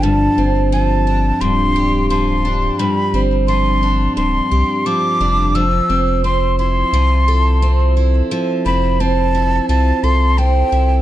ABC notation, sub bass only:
X:1
M:4/4
L:1/8
Q:1/4=87
K:Gdor
V:1 name="Sub bass" clef=bass
G,,, G,,,3 D,,,4 | z G,,,3 D,,, C,, z F,,,- | F,,, F,,,3 C,,4 | z F,,,3 C,, C,,2 C,, |]